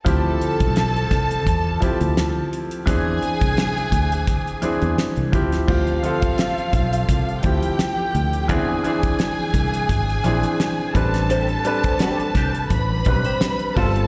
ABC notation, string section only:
X:1
M:4/4
L:1/8
Q:"Swing 16ths" 1/4=85
K:Ddor
V:1 name="String section"
[Aa]6- [Aa] z | [^G^g]6 z2 | [Ff]4- [Ff] [Gg]3 | [^G^g]6- [Gg] [Aa]- |
[Aa]4 [Bb]3 [Aa] |]